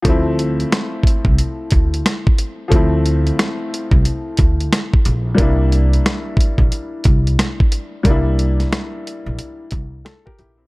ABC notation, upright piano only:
X:1
M:4/4
L:1/16
Q:"Swing 16ths" 1/4=90
K:Dm
V:1 name="Upright piano"
z16 | z16 | z16 | z12 A [GB] [EG] [CE] |]
V:2 name="Upright piano"
[F,A,CE]16 | [F,A,CE]16 | [G,B,DE]16 | [G,B,DE]16 |]